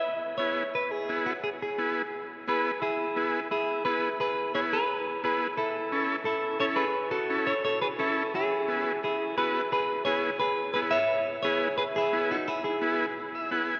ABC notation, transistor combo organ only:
X:1
M:4/4
L:1/8
Q:1/4=174
K:E
V:1 name="Transistor combo organ"
z2 [B,EG] z3 [B,EG] z | z2 [B,EG] z3 [B,EG] z | z2 [B,EG] z3 [B,EG] z | z2 [B,EG] z3 [B,EG] z |
z2 [CEA] z3 [CEA] z | z2 [CEA] z3 [CEA] z | z2 [B,EG] z3 [B,EF] z | z2 [B,EG] z3 [B,EG] z |
z2 [B,EG] z3 [B,EG] z | z2 [B,EG] z2 e [B,EGf] g |]